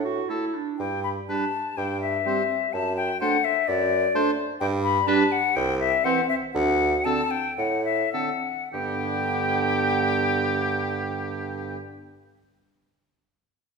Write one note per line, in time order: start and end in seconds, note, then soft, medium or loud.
0.00 0.21 A2 medium
0.00 0.29 F#5 loud
0.05 0.31 F#4 loud
0.29 0.45 A3 medium
0.29 0.56 E4 medium
0.29 0.46 A4 medium
0.55 0.80 D4 medium
0.79 1.21 G2 loud
0.79 1.02 G5 loud
1.03 1.09 B5 loud
1.29 1.45 G3 medium
1.29 1.45 D4 medium
1.29 1.45 B4 medium
1.29 1.79 A5 loud
1.77 2.17 G2 medium
1.77 2.01 G5 loud
2.01 2.75 E5 loud
2.25 2.42 G3 medium
2.25 2.41 C4 medium
2.25 2.43 C5 medium
2.73 3.13 F#2 loud
2.73 2.96 A5 loud
2.97 3.20 G5 loud
3.21 3.38 A3 medium
3.21 3.37 D4 medium
3.21 3.37 C5 loud
3.21 3.46 F#5 loud
3.44 3.69 E5 loud
3.68 4.07 F#2 loud
3.68 4.38 D5 loud
4.15 4.31 A3 loud
4.15 4.31 D4 loud
4.15 4.31 C5 loud
4.60 5.00 G2 loud
4.60 4.66 G5 loud
4.84 5.09 B5 loud
5.07 5.24 G3 loud
5.07 5.23 D4 loud
5.07 5.24 B4 loud
5.07 5.33 A5 loud
5.32 5.57 F#5 loud
5.56 5.96 C2 loud
5.56 5.79 G5 loud
5.80 6.06 E5 loud
6.04 6.20 E3 loud
6.04 6.21 C4 loud
6.04 6.21 C5 loud
6.04 6.28 F#5 loud
6.29 6.35 E5 loud
6.54 6.97 D2 loud
6.54 7.06 F#5 loud
7.05 7.22 D3 medium
7.05 7.21 C4 medium
7.05 7.22 A4 medium
7.05 7.32 A5 loud
7.31 7.57 G5 loud
7.58 8.04 A2 loud
7.58 7.84 F#5 loud
7.85 8.13 E5 loud
8.13 8.30 D3 medium
8.13 8.30 C4 medium
8.13 8.30 A4 medium
8.13 8.72 F#5 loud
8.73 11.78 G2 loud
8.73 11.78 D3 medium
8.73 11.78 B3 loud
8.73 11.77 G4 loud
8.73 11.77 G5 loud